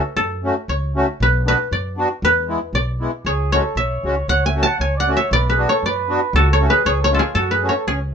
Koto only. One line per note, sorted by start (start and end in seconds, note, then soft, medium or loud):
0.00 0.16 A4 soft
0.00 1.22 B4 medium
0.00 0.69 C#5 medium
0.17 2.07 A4 medium
0.69 1.79 C#5 soft
1.23 1.48 B4 medium
1.48 2.24 B4 medium
1.73 2.75 D5 medium
2.25 4.02 B4 medium
2.75 3.32 D5 medium
3.26 3.52 C#5 medium
3.52 5.18 C#5 medium
3.77 5.16 E5 medium
4.29 5.00 F#5 medium
4.46 4.69 G#5 medium
4.63 4.87 A5 medium
4.81 6.11 G#5 medium
5.00 6.39 F#5 medium
5.17 6.66 E5 medium
5.33 5.75 D5 medium
5.50 6.70 B4 medium
5.69 5.92 C#5 medium
5.86 6.59 D5 medium
6.36 7.14 A4 medium
6.53 6.86 C#5 medium
6.70 7.51 B4 medium
6.86 7.04 C#5 medium
7.04 7.10 C#5 medium
7.14 7.25 A4 soft
7.19 7.41 G#4 medium
7.35 7.94 A4 medium
7.51 8.14 B4 medium
7.69 8.14 C#5 medium
7.88 7.95 G#4 medium